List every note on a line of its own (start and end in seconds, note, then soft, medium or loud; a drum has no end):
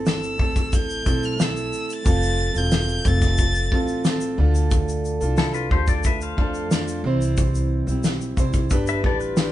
0.00 0.35 G1 medium
0.00 0.37 A3 soft
0.00 0.38 C4 soft
0.00 0.39 E4 soft
0.00 0.39 A4 medium
0.06 0.76 E6 medium
0.06 snare loud
0.06 shaker medium
0.23 shaker soft
0.38 1.02 A1 medium
0.38 1.04 A3 medium
0.38 1.05 C4 medium
0.38 1.06 E4 medium
0.38 1.07 A4 medium
0.38 kick loud
0.56 kick medium
0.56 shaker soft
0.73 1.27 G6 loud
0.73 kick medium
0.73 shaker medium
0.90 shaker medium
1.04 1.69 B1 medium
1.04 1.36 A3 medium
1.04 1.37 C4 medium
1.04 1.39 E4 medium
1.04 1.40 A4 medium
1.04 kick medium
1.04 shaker medium
1.23 1.44 F6 loud
1.23 shaker soft
1.38 2.04 A3 medium
1.38 2.05 C4 medium
1.38 2.06 E4 medium
1.38 2.06 A4 medium
1.38 snare loud
1.38 shaker medium
1.42 1.94 E6 loud
1.57 shaker medium
1.73 shaker medium
1.90 2.59 A6 loud
1.90 shaker medium
2.04 2.51 F1 loud
2.04 2.55 F3 medium
2.04 2.55 A3 medium
2.04 2.56 C4 medium
2.04 2.55 F4 medium
2.04 2.53 A4 medium
2.04 kick loud
2.04 shaker medium
2.23 shaker medium
2.54 3.01 E1 medium
2.54 3.04 C4 soft
2.54 3.06 F4 soft
2.54 3.05 A4 medium
2.54 3.09 G6 loud
2.54 shaker medium
2.71 snare loud
2.71 shaker medium
2.89 shaker soft
3.04 3.67 F1 loud
3.04 3.71 A3 medium
3.04 3.72 C4 medium
3.04 3.74 F4 medium
3.04 3.75 A4 medium
3.04 4.06 A6 loud
3.04 kick medium
3.04 shaker medium
3.21 kick medium
3.21 snare soft
3.21 shaker medium
3.38 kick medium
3.38 shaker medium
3.55 shaker medium
3.72 4.34 A1 medium
3.72 4.04 A3 medium
3.72 4.05 C4 medium
3.72 4.06 F4 medium
3.72 4.07 A4 medium
3.72 kick medium
3.88 shaker soft
4.05 4.38 A3 medium
4.05 4.39 C4 medium
4.05 4.39 F4 medium
4.05 4.39 A4 medium
4.05 snare loud
4.05 shaker medium
4.21 shaker medium
4.38 5.17 D2 loud
4.38 5.21 D3 loud
4.38 5.22 A3 medium
4.38 5.22 D4 medium
4.38 5.21 F4 medium
4.38 5.20 A4 loud
4.55 shaker medium
4.71 kick loud
4.71 shaker medium
4.89 shaker medium
5.05 shaker medium
5.21 5.67 C2 medium
5.21 5.70 D4 medium
5.21 5.71 F4 medium
5.21 5.71 A4 medium
5.21 shaker medium
5.37 5.54 E4 medium
5.37 5.54 A4 medium
5.37 snare loud
5.37 shaker medium
5.54 5.71 F4 medium
5.54 5.70 B4 medium
5.54 shaker soft
5.70 6.34 D2 loud
5.70 6.36 A3 medium
5.70 6.37 D4 medium
5.70 6.38 F4 medium
5.70 5.88 G4 medium
5.70 6.39 A4 medium
5.70 5.87 C5 medium
5.70 kick medium
5.87 6.04 A4 medium
5.87 6.04 D5 medium
5.87 kick medium
5.87 shaker medium
6.04 6.21 B4 medium
6.04 6.21 E5 medium
6.04 kick medium
6.04 shaker medium
6.21 7.01 C5 medium
6.21 7.01 F5 medium
6.21 shaker medium
6.37 7.00 F2 medium
6.37 6.69 A3 medium
6.37 6.71 D4 medium
6.37 6.71 F4 medium
6.37 6.72 A4 medium
6.37 kick medium
6.54 shaker soft
6.71 7.04 A3 medium
6.71 7.05 D4 medium
6.71 7.05 F4 medium
6.71 7.06 A4 medium
6.71 snare loud
6.71 shaker medium
6.88 shaker medium
7.04 7.83 C2 loud
7.04 7.88 C3 medium
7.04 7.88 E3 loud
7.04 7.90 G3 loud
7.04 7.88 C4 loud
7.04 7.87 E4 loud
7.04 7.86 C5 medium
7.22 shaker medium
7.37 kick loud
7.37 shaker medium
7.55 shaker medium
7.87 8.33 B1 medium
7.87 8.37 C4 medium
7.87 8.38 E4 medium
7.87 8.37 C5 medium
7.87 shaker soft
7.91 8.35 G3 medium
8.04 snare loud
8.04 shaker medium
8.21 shaker soft
8.37 8.68 C2 loud
8.37 8.70 G3 medium
8.37 8.71 C4 medium
8.37 8.71 E4 medium
8.37 8.72 C5 medium
8.37 kick loud
8.37 shaker medium
8.54 kick medium
8.54 shaker medium
8.70 9.01 G1 loud
8.70 9.02 G3 medium
8.70 9.03 D4 medium
8.70 9.04 G4 medium
8.70 9.05 B4 medium
8.70 kick medium
8.70 shaker medium
8.87 9.04 B4 medium
8.87 9.04 E5 medium
8.87 shaker medium
9.03 9.52 A1 medium
9.03 9.35 G3 medium
9.03 9.36 D4 medium
9.03 9.38 G4 medium
9.03 9.20 A4 medium
9.03 9.39 B4 medium
9.03 9.21 D5 medium
9.03 kick medium
9.20 9.52 F4 medium
9.20 9.52 B4 medium
9.20 shaker soft
9.36 9.52 G3 medium
9.36 9.52 D4 medium
9.36 9.52 G4 medium
9.36 9.52 B4 medium
9.36 snare loud
9.36 shaker medium